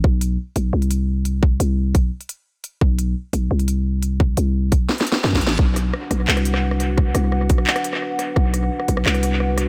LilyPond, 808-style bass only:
\new Staff \with { instrumentName = "808-style bass" } { \clef bass \time 4/4 \key b \phrygian \tempo 4 = 173 b,,4 r8 b,,8 c,2~ | c,8 c,4 b,,8 r2 | b,,4 r8 b,,8 c,2~ | c,8 c,4 b,,8 r4 fis,8 a,,8 |
b,,4 r8 b,,8 c,2~ | c,8 c,4 b,,8 r2 | b,,4 r8 b,,8 c,2 | }